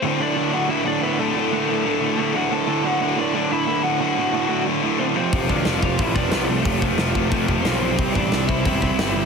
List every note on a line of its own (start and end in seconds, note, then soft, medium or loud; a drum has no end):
0.00 0.20 D2 loud
0.00 0.19 A2 medium
0.00 0.19 D3 medium
0.00 0.19 C4 medium
0.00 0.22 C5 medium
0.20 0.35 D2 medium
0.20 0.35 A2 medium
0.20 0.36 D3 loud
0.20 0.52 D4 medium
0.20 0.55 D5 medium
0.36 0.52 D2 medium
0.36 0.51 A2 medium
0.36 0.51 D3 medium
0.52 0.68 D2 medium
0.52 0.67 A2 medium
0.52 0.69 D3 medium
0.52 0.69 F#4 medium
0.52 0.70 F#5 medium
0.68 0.86 D2 loud
0.68 0.85 A2 medium
0.68 0.85 D3 loud
0.68 0.85 E4 medium
0.68 0.85 E5 medium
0.85 1.01 D2 medium
0.85 1.01 A2 medium
0.85 1.03 D3 medium
0.85 1.02 D4 medium
0.85 1.03 D5 medium
1.02 1.19 D2 medium
1.02 1.18 A2 medium
1.02 1.19 D3 medium
1.02 1.18 B3 medium
1.02 1.19 B4 medium
1.19 1.35 D2 medium
1.19 1.35 A2 medium
1.19 1.35 D3 medium
1.19 2.30 A3 medium
1.19 2.36 A4 medium
1.35 1.53 D2 medium
1.35 1.51 A2 medium
1.35 1.52 D3 medium
1.52 1.68 D2 medium
1.52 1.68 A2 medium
1.52 1.69 D3 loud
1.68 1.86 D2 medium
1.68 1.84 A2 medium
1.68 1.85 D3 medium
1.85 2.01 D2 medium
1.85 2.01 A2 medium
1.85 2.02 D3 medium
2.02 2.18 D2 medium
2.02 2.16 A2 loud
2.02 2.17 D3 loud
2.17 2.33 D2 medium
2.17 2.34 A2 medium
2.17 2.34 D3 medium
2.34 2.51 D2 medium
2.34 2.50 A2 medium
2.34 2.50 D3 loud
2.34 2.51 F#4 medium
2.34 2.53 F#5 medium
2.50 2.67 D2 medium
2.50 2.67 A2 medium
2.50 2.68 D3 loud
2.50 2.83 A4 medium
2.50 2.86 A5 medium
2.67 2.85 D2 loud
2.67 2.83 A2 medium
2.67 2.83 D3 loud
2.84 3.00 D2 medium
2.84 3.00 A2 medium
2.84 3.01 D3 medium
2.84 3.16 F#4 medium
2.84 3.16 F#5 loud
3.00 3.17 D2 medium
3.00 3.17 A2 medium
3.00 3.17 D3 medium
3.18 3.33 D2 medium
3.18 3.34 A2 medium
3.18 3.34 D3 medium
3.18 3.34 D4 medium
3.18 3.34 D5 medium
3.34 3.50 D2 medium
3.34 3.50 A2 medium
3.34 3.49 D3 loud
3.34 3.50 D4 medium
3.34 3.51 D5 medium
3.51 3.66 D2 medium
3.51 3.66 A2 medium
3.51 3.66 D3 medium
3.51 3.82 E4 medium
3.51 3.83 E5 medium
3.67 3.83 D2 medium
3.67 3.82 A2 medium
3.67 3.82 D3 medium
3.83 3.99 D2 medium
3.83 4.00 A2 medium
3.83 4.00 D3 medium
3.83 3.99 F#4 medium
3.83 4.00 F#5 medium
4.00 4.15 D2 medium
4.00 4.15 A2 loud
4.00 4.15 D3 loud
4.00 4.63 F#4 medium
4.00 4.63 F#5 medium
4.16 4.31 D2 medium
4.16 4.32 A2 medium
4.16 4.32 D3 medium
4.32 4.49 D2 medium
4.32 4.48 A2 medium
4.32 4.48 D3 medium
4.49 4.65 D2 medium
4.49 4.66 A2 medium
4.49 4.66 D3 medium
4.66 4.82 D2 medium
4.66 4.82 A2 medium
4.66 4.81 D3 loud
4.82 4.98 D2 medium
4.82 4.99 A2 medium
4.82 4.99 D3 medium
4.99 5.15 D2 medium
4.99 5.15 A2 medium
4.99 5.16 D3 medium
4.99 5.05 C4 medium
4.99 5.04 C5 medium
5.15 5.33 F2 medium
5.15 5.31 C3 medium
5.15 5.31 F3 loud
5.15 5.48 C4 medium
5.15 5.51 C5 medium
5.32 5.49 F1 medium
5.32 5.48 F2 medium
5.32 5.49 C3 medium
5.32 5.50 F3 loud
5.32 kick loud
5.32 open hi-hat medium
5.49 5.65 D2 medium
5.49 5.66 F2 medium
5.49 5.65 C3 medium
5.49 5.65 F3 loud
5.49 5.81 D4 medium
5.49 5.80 D5 medium
5.49 kick medium
5.65 5.98 F1 medium
5.65 5.81 F2 medium
5.65 5.81 C3 medium
5.65 5.82 F3 medium
5.65 snare loud
5.65 open hi-hat soft
5.81 6.00 F2 medium
5.81 5.99 C3 medium
5.81 5.99 F3 medium
5.81 5.98 F4 medium
5.81 5.99 F5 medium
5.81 kick medium
5.98 6.15 A1 loud
5.98 6.15 F2 medium
5.98 6.16 C3 medium
5.98 6.16 F3 loud
5.98 6.15 E4 medium
5.98 6.16 E5 loud
5.98 kick loud
5.98 open hi-hat medium
6.15 6.31 F1 medium
6.15 6.32 F2 medium
6.15 6.32 C3 medium
6.15 6.31 F3 medium
6.15 6.32 D4 medium
6.15 6.30 D5 medium
6.15 kick medium
6.30 6.49 C2 medium
6.30 6.48 F2 medium
6.30 6.48 C3 medium
6.30 6.49 F3 medium
6.30 6.48 B3 medium
6.30 6.47 B4 medium
6.30 snare loud
6.30 open hi-hat medium
6.47 6.64 C2 medium
6.47 6.65 F2 medium
6.47 6.65 C3 medium
6.47 6.64 F3 medium
6.47 7.61 A3 medium
6.47 7.62 A4 medium
6.65 6.97 F1 medium
6.65 6.81 F2 medium
6.65 6.82 C3 medium
6.65 6.82 F3 loud
6.65 kick loud
6.65 open hi-hat medium
6.82 6.99 F2 medium
6.82 6.98 C3 medium
6.82 6.98 F3 loud
6.82 kick medium
6.98 7.30 F1 medium
6.98 7.14 F2 medium
6.98 7.15 C3 medium
6.98 7.15 F3 medium
6.98 snare loud
6.98 open hi-hat medium
7.15 7.33 F2 medium
7.15 7.33 C3 medium
7.15 7.33 F3 medium
7.15 kick medium
7.30 7.48 F2 medium
7.30 7.47 F3 loud
7.30 kick loud
7.30 open hi-hat medium
7.34 7.47 F2 medium
7.34 7.48 C3 medium
7.34 7.49 F3 loud
7.48 7.64 F1 medium
7.48 7.65 F2 medium
7.48 7.65 C3 medium
7.48 7.64 F3 medium
7.48 kick medium
7.62 7.96 B1 medium
7.62 7.81 C3 medium
7.62 7.82 F3 medium
7.62 7.81 C4 medium
7.62 7.78 C5 medium
7.62 snare loud
7.62 open hi-hat medium
7.66 7.80 F2 medium
7.79 7.97 F2 medium
7.79 7.97 C3 medium
7.79 7.98 F3 medium
7.79 8.13 C4 medium
7.79 8.15 C5 medium
7.98 8.14 C2 medium
7.98 8.16 C3 medium
7.98 8.15 G3 medium
7.98 8.15 C4 loud
7.98 kick loud
7.98 open hi-hat medium
8.12 8.31 A1 medium
8.12 8.32 C3 medium
8.12 8.32 G3 medium
8.12 8.33 C4 medium
8.12 8.46 D4 medium
8.12 8.47 D5 loud
8.12 kick medium
8.32 8.63 C2 medium
8.32 8.49 C3 medium
8.32 8.49 G3 medium
8.32 8.48 C4 medium
8.32 snare medium
8.32 open hi-hat medium
8.47 8.65 C3 medium
8.47 8.66 G3 medium
8.47 8.66 C4 medium
8.47 8.65 E4 medium
8.47 8.62 E5 medium
8.47 kick medium
8.63 8.81 E1 loud
8.63 8.83 C3 medium
8.63 8.83 G3 medium
8.63 9.25 E4 medium
8.63 9.25 E5 medium
8.63 kick loud
8.63 open hi-hat medium
8.67 8.81 C4 loud
8.82 8.97 C2 medium
8.82 8.98 C3 medium
8.82 8.99 G3 medium
8.82 8.99 C4 medium
8.82 kick medium
8.99 9.14 G1 medium
8.99 9.15 C3 medium
8.99 9.16 G3 medium
8.99 9.14 C4 medium
8.99 snare loud
8.99 open hi-hat medium
9.15 9.25 G1 medium
9.15 9.25 C3 medium
9.15 9.25 G3 medium
9.15 9.25 C4 loud